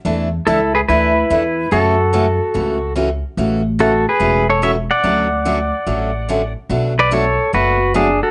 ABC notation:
X:1
M:4/4
L:1/8
Q:"Swing" 1/4=144
K:A
V:1 name="Pedal steel guitar"
z2 [EA] [GB] [EB]4 | [FA]6 z2 | z2 [FA] [GB]2 [Ac] [ce] [df]- | [df]6- [df] z |
z [Bd] [Ac]2 [FB]2 [DG] [FA] |]
V:2 name="Steel-string acoustic guitar"
[E,A,DEA] z [E,A,DEA] z [E,A,DEA] z [E,A,DEA] z | [C,E,A,CF] z [C,E,A,CF] z [C,E,A,CF] z [C,E,A,CF] z | [C,E,A,CF] z [C,E,A,CF] z [C,E,A,CF] z [C,E,A,CF] z | [D,F,A,CF] z [D,F,A,CF] z [D,F,A,CF] z [D,F,A,CF] z |
[B,,F,A,DF] z [B,,F,A,DF] z [B,,F,A,DF] z [B,,F,A,DF] z |]
V:3 name="Upright bass" clef=bass
E,,2 C,,2 D,,2 E,,2 | F,,4 C,,4 | A,,,4 E,,,4 | D,,4 A,,,4 |
B,,,4 F,,,4 |]